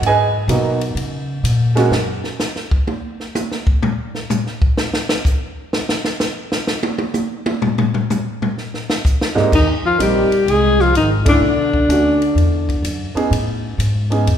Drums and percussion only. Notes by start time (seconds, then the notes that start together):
0.03 ride
0.49 hi-hat pedal, ride
0.81 ride
0.97 ride
1.45 hi-hat pedal, ride
1.77 snare, ride
1.92 snare
2.24 snare
2.40 snare, hi-hat pedal
2.56 snare
2.71 kick
2.87 high tom
3.20 snare
3.35 hi-hat pedal, high tom
3.52 snare
3.67 kick
3.83 floor tom
4.15 snare
4.30 floor tom, hi-hat pedal
4.46 snare
4.62 kick
4.77 snare
4.94 snare
5.09 snare
5.25 kick, hi-hat pedal
5.73 snare
5.89 snare
6.05 snare
6.20 snare, hi-hat pedal
6.52 snare
6.67 snare
6.83 high tom
6.98 high tom
7.14 hi-hat pedal, high tom
7.46 high tom
7.62 floor tom
7.78 floor tom
7.94 floor tom
8.10 floor tom, hi-hat pedal
8.42 floor tom
8.58 snare
8.74 snare
8.90 snare
9.05 kick, hi-hat pedal
9.21 snare
9.37 snare
9.52 kick, crash
10.00 hi-hat pedal, ride
10.32 ride
10.48 ride
10.79 snare
10.95 hi-hat pedal, ride
11.26 kick, ride
11.73 kick
11.90 hi-hat pedal, ride
12.22 ride
12.38 ride
12.69 kick, ride
12.84 hi-hat pedal, ride
13.17 ride
13.33 ride
13.80 hi-hat pedal, ride
14.12 ride
14.27 ride